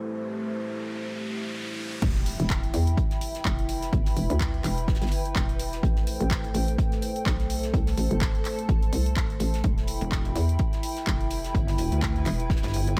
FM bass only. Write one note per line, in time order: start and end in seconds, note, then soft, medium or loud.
2.02 2.37 E1 loud
2.40 2.72 E1 loud
2.74 2.96 E2 loud
3.45 3.91 F1 medium
3.93 4.15 G1 loud
4.17 4.28 E1 loud
4.30 4.63 D2 medium
4.64 4.99 E1 loud
5.02 5.34 G1 loud
5.36 5.82 E1 medium
5.83 6.18 A1 loud
6.21 6.53 A1 loud
6.55 6.77 A1 loud
7.26 7.72 B1 loud
7.74 7.96 C2 loud
7.98 8.09 A1 medium
8.11 8.43 G1 medium
8.69 8.91 A1 loud
8.93 9.39 C2 loud
9.40 9.62 A1 loud
9.64 9.99 E1 loud
10.36 10.58 E2 loud
11.07 11.53 F1 loud
12.26 12.61 E1 loud